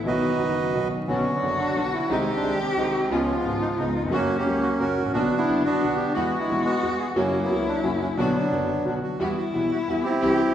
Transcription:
0.04 B1 B2 D#3 F#3 B3 D#4 F#4 B4 D#5
0.38 F#1 F#2 D#3 F#3 B3 D#4 F#4
0.73 B1 B2 D#3 F#3 B3 D#4 F#4
0.77 F#4
1.08 B1 B2 D3 F#3 B3 C#4 D4 F#4
1.33 D3 F#3 B3
1.42 F#1 F#2 D3 B3 C#4 D4 F#4
1.60 D4
1.76 B1 B2 D3 B3 C#4 D4 F#4
1.93 E4
2.09 C2 C3 D#3 G#3 C4 D#4 G4 G#4
2.36 G#3 D4
2.43 C2 C3 D#3 G#3 C4 D#4 G#4
2.61 C4
2.77 C2 C3 D#3 G#3 C4 D#4 G#4
3.10 C#2 C#3 F3 G#3 B3 C#4 F4
3.37 F3 G#3 B3
3.45 G#1 G#2 C#3 G#3 B3 C#4 F4
3.60 D#4
3.78 C#2 C#3 G#3 B3 C#4 D#4 F4
3.95 F4
4.00 D#2 E2
4.07 F2 F#2 C#3 F#3 A#3 F#4
4.12 A#3 C#4 F#4
4.37 A#3 C#4 G4
4.45 C#2 C#3 F#3 A#3 C#4 F#4
4.62 F#4
4.79 F#2 C#3 F#3 A#3 C#4 F#4 A#4
5.01 G#1
5.06 A1
5.10 A#1 B3 D4 F#4
5.14 B1 B2 D3 F#3 B3 F#4
5.38 B3 E4
5.48 F#1 F#2 D3 F#3 B3 D4 F#4
5.65 B3 D4 F#4
5.81 B1 B2 D3 F#3 B3 D4 F#4
5.96 G4
6.13 E2 E3 G#3 B3 E4 F#4
6.39 G#3 B3 E4
6.49 B1 B2 E3 G#3 B3 E4 F#4
6.65 B3 F#4
6.82 E2 E3 G#3 B3 E4 F#4
6.99 G#4
7.16 F#2 C#3 F#3 A#3 C#4 E4 F#4
7.43 F#3 B3
7.50 C#2 C#3 F#3 A#3 C#4 F#4
7.68 D4
7.82 F#2 C#3 F#3 A#3 C#4 D4 F#4
8.02 C#4
8.17 B1 B2 D3 F#3 B3 D4 F#4
8.51 F#1 F#2 D3 F#3 B3 D4 F#4
8.85 B1 B2 D3 F#3 B3 D4 F#4
9.03 F#4
9.19 E2 E3 G3 B3 E4 F#4 G4
9.38 F#4
9.53 B1 B2 E3 G3 B3 E4 F#4
9.71 F#4
9.88 E2 E3 G3 B3 E4 F#4
10.03 C4 E4 G4
10.21 C2 C3 E3 G3 C4 E4 G4

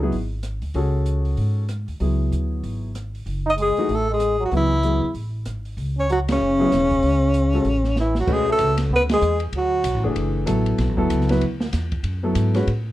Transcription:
0.02 F#3 B3 E4 G#4
0.12 G#1, open hi-hat
0.43 cross-stick, closed hi-hat
0.62 D2, open hi-hat
0.74 C#2 C#4 F#4 G#4 A4, open hi-hat
1.06 closed hi-hat
1.25 open hi-hat
1.37 G#2, open hi-hat
1.69 cross-stick, closed hi-hat
1.88 D#2, open hi-hat
2.00 C#2 F#3 B3 E4 G#4, open hi-hat
2.32 D2, closed hi-hat
2.63 G#1, open hi-hat
2.95 cross-stick, closed hi-hat
3.15 open hi-hat
3.26 F#1, open hi-hat
3.46 D#4 D#5
3.57 G#3, closed hi-hat
3.62 G#4
3.77 E3 A3 D#4 F#4, muted upright bass stroke, open hi-hat
3.88 A1 A3, open hi-hat
3.95 A4
4.11 G#3 G#4
4.20 cross-stick, closed hi-hat
4.40 F#3
4.45 F#4
4.51 C#2 E3 F#3 B3 E4 G#4, open hi-hat
4.56 E4
4.83 F#3 B3 E4 G#4, closed hi-hat
5.02 E2
5.14 A1, open hi-hat
5.45 G#1, cross-stick, closed hi-hat
5.65 open hi-hat
5.77 C#2, open hi-hat
5.98 C#4 C#5
6.10 F#3 F#4, closed hi-hat
6.28 C#3 C#4, snare, ride
6.40 F#1
6.59 F#3 B3 E4 G#4
6.72 E1, cross-stick, snare, closed hi-hat
6.90 kick, open hi-hat
7.02 C#2, open hi-hat
7.34 closed hi-hat
7.53 G#3 C#4 F#4 A4, open hi-hat
7.65 A1, open hi-hat
7.84 snare
7.96 E3, snare
8.00 E4
8.15 F#3, snare
8.20 F#4
8.27 B1 G#3 A3 C#4 F#4 B4, kick, crash
8.33 G#4
8.49 A3 A4
8.59 C#2, hi-hat pedal, ride
8.78 snare, ride
8.90 D2 B3
8.96 B4
9.09 G#3 G#4, snare, ride
9.21 E2, hi-hat pedal
9.40 ride
9.53 D2 F#3, ride
9.58 F#4
9.84 B1, hi-hat pedal, ride
9.94 A1
10.04 F#1 E3 A3 D4 G#4
10.16 F#1, ride
10.46 A1 F#3 B3 E4 A4, hi-hat pedal, ride
10.66 ride
10.78 B1, snare, ride
10.89 A1
10.97 F#1 F#3 B3 E4 A4, kick
11.10 C#2, hi-hat pedal, ride
11.21 snare
11.29 F#3 B3 E4 B4, snare, ride
11.41 D2, ride
11.61 snare
11.73 E2, snare, hi-hat pedal, ride
11.92 kick, ride
12.03 F#2, ride
12.23 F#3 B3 E4 A4
12.35 G#2, hi-hat pedal, ride
12.54 G#3 C#4 F#4 B4, snare, ride
12.67 A2, ride

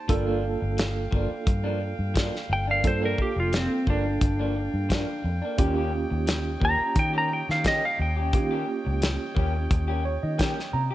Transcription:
0.08 G1 F3 A#3 D4 F4 A4 F5 G5, kick, closed hi-hat
0.26 F3 A#3 D4
0.42 muted clean electric guitar stroke
0.61 G1, muted clean electric guitar stroke
0.77 muted clean electric guitar stroke, snare, closed hi-hat
1.11 G1 F3 A#3 D4, kick
1.30 muted clean electric guitar stroke, muted fingered electric bass stroke
1.46 G2, muted clean electric guitar stroke, kick, closed hi-hat
1.64 F3 A#3 D4
1.80 muted clean electric guitar stroke
1.99 G2
2.14 F3 A#3 D4, kick, snare, closed hi-hat
2.33 muted clean electric guitar stroke, snare
2.49 G1 G5, muted clean electric guitar stroke
2.67 A#3 D4 F5
2.84 G2 A#3 D4 F4 A4 C5, kick, closed hi-hat
3.02 F3 A#3 D4 A#4
3.18 G4, muted clean electric guitar stroke, kick
3.36 F1 F4, muted clean electric guitar stroke
3.53 C4, muted clean electric guitar stroke, snare, closed hi-hat
3.87 G1 F3 A#3 D4, kick
4.05 muted clean electric guitar stroke
4.21 G1, muted clean electric guitar stroke, kick, closed hi-hat
4.39 F3 A#3 D4
4.55 muted clean electric guitar stroke
4.74 G2
4.89 F3 A#3 D4, kick, snare, closed hi-hat
5.08 muted clean electric guitar stroke
5.24 F2, muted clean electric guitar stroke
5.42 A#3 D4
5.58 D#2 A#3 C#4 F4 G4 C#5 D#5, kick, closed hi-hat
5.76 A#3 C#4 G4
5.92 muted clean electric guitar stroke
6.11 D#2, muted clean electric guitar stroke
6.27 muted clean electric guitar stroke, snare, closed hi-hat
6.60 D#2 A#3 C#4 G4, kick
6.65 A#5
6.79 muted clean electric guitar stroke, muted fingered electric bass stroke
6.95 D#3 G5, muted clean electric guitar stroke, kick, closed hi-hat
7.14 A#3 C#4 G4
7.18 A#5
7.29 G5, muted clean electric guitar stroke
7.49 D#3 F5, snare
7.63 A#3 C#4 G4, kick, snare, closed hi-hat
7.68 D#5
7.83 F5, muted clean electric guitar stroke
7.98 D#2 G5, muted clean electric guitar stroke
8.16 C#4 G4
8.33 D#3 A#3 C#4 F4 G4, kick, closed hi-hat
8.51 A#3 C#4 G4
8.67 muted clean electric guitar stroke
8.85 C#2, muted clean electric guitar stroke
9.02 muted clean electric guitar stroke, snare, closed hi-hat
9.35 D#2 A#3 C#4 G4, kick
9.54 muted clean electric guitar stroke
9.70 D#2, muted clean electric guitar stroke, kick, closed hi-hat
9.88 A#3 C#4 G4
10.04 C#5, muted clean electric guitar stroke
10.23 D#3 D#5
10.38 A#3 C#4 G4 G5, kick, snare, closed hi-hat
10.57 muted clean electric guitar stroke, snare
10.73 C3 A#5, muted clean electric guitar stroke
10.91 G4

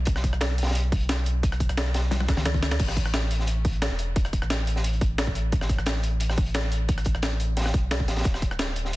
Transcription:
Already playing: B1
0.05 kick, closed hi-hat
0.16 cross-stick, snare
0.24 kick, closed hi-hat
0.33 B1, cross-stick
0.41 snare, closed hi-hat
0.58 closed hi-hat
0.62 snare, closed hi-hat
0.67 snare, closed hi-hat
0.71 snare, closed hi-hat
0.75 closed hi-hat
0.92 kick, closed hi-hat, open hi-hat
1.00 closed hi-hat
1.09 snare, closed hi-hat
1.26 closed hi-hat
1.43 kick, closed hi-hat
1.52 cross-stick, closed hi-hat
1.60 kick, closed hi-hat
1.69 B1, cross-stick, closed hi-hat
1.77 snare, closed hi-hat
1.94 snare, closed hi-hat
2.11 snare, closed hi-hat, high tom
2.20 cross-stick, high tom
2.28 C#2, kick, snare, closed hi-hat
2.37 snare, closed hi-hat, mid tom
2.46 snare, closed hi-hat, mid tom
2.54 kick, closed hi-hat, mid tom
2.63 snare, closed hi-hat
2.71 D2, snare, closed hi-hat
2.79 A1, kick, closed hi-hat, crash
2.88 cross-stick, snare
2.97 kick, closed hi-hat
3.06 cross-stick
3.14 snare, closed hi-hat
3.31 closed hi-hat
3.39 snare
3.47 closed hi-hat
3.65 kick, closed hi-hat, open hi-hat
3.73 closed hi-hat
3.82 snare, closed hi-hat
3.91 E1
3.99 closed hi-hat
4.16 kick, closed hi-hat
4.25 cross-stick, closed hi-hat
4.33 kick, closed hi-hat
4.42 A1, cross-stick
4.50 snare, closed hi-hat
4.67 closed hi-hat
4.76 snare
4.84 closed hi-hat
4.93 closed hi-hat
5.01 kick, closed hi-hat
5.18 snare, closed hi-hat
5.27 kick
5.35 closed hi-hat
5.52 kick, closed hi-hat
5.61 cross-stick, snare
5.69 kick, closed hi-hat
5.78 A1, cross-stick
5.86 snare, closed hi-hat
6.03 closed hi-hat
6.20 closed hi-hat
6.29 cross-stick, snare
6.38 kick, closed hi-hat, open hi-hat
6.47 closed hi-hat
6.54 snare, closed hi-hat
6.72 closed hi-hat
6.89 kick, closed hi-hat
6.98 cross-stick, closed hi-hat
7.05 kick, closed hi-hat
7.15 A1, cross-stick
7.22 snare, closed hi-hat
7.40 closed hi-hat
7.57 snare, closed hi-hat
7.61 snare, closed hi-hat
7.65 cross-stick, snare, closed hi-hat
7.74 B1, kick, closed hi-hat
7.91 snare, closed hi-hat
8.00 kick
8.08 A1, snare, closed hi-hat
8.17 snare, closed hi-hat
8.21 snare, closed hi-hat
8.25 D1, kick, closed hi-hat
8.34 cross-stick, snare
8.42 kick, closed hi-hat
8.51 cross-stick
8.59 snare, closed hi-hat
8.76 closed hi-hat
8.85 snare

